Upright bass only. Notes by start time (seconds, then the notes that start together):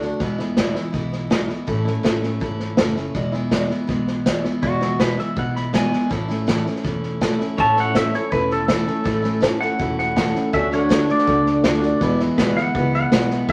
Already playing: D2
0.20 E2
0.94 B1
1.68 A1
2.41 G#1
2.78 F#1
3.15 E1
3.89 B1
4.63 E1
5.37 B1
6.11 A1
6.84 E1
7.58 A1
8.32 E1
9.05 A1
9.79 E1
10.53 D2
11.27 C#2
11.64 D2
12.01 E2
12.38 D2
12.75 C#2
13.12 B1
13.48 A1